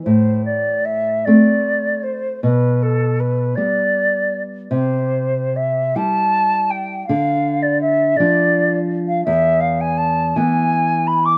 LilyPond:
<<
  \new Staff \with { instrumentName = "Flute" } { \time 6/8 \key a \minor \tempo 4. = 54 c''8 d''8 e''8 d''4 c''8 | b'8 a'8 b'8 d''4. | c''4 e''8 a''4 g''8 | f''8. d''16 e''8 d''4~ d''16 f''16 |
e''8 f''16 gis''16 a''8 gis''4 b''16 d'''16 | }
  \new Staff \with { instrumentName = "Nylon-string guitar" } { \clef bass \time 6/8 \key a \minor a,4. <a c'>4. | b,4. <g b>4. | c4. <g e'>4. | d4. <f d'>4. |
e,4. <e b>4. | }
>>